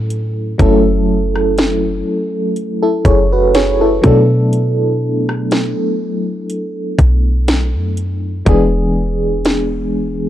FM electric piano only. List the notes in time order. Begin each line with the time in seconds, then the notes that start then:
Already playing: F#3 A3 C#4 E4 A4
0.58 F#3 A3 C#4 E4 A4
2.83 E4 A4
3.06 G#4 C#5
3.32 F#4 B4
3.55 G#4 C#5
3.81 E4 A4
4.02 F#3 A3 B3 D4 A4
8.45 E3 G#3 B3 D4 G#4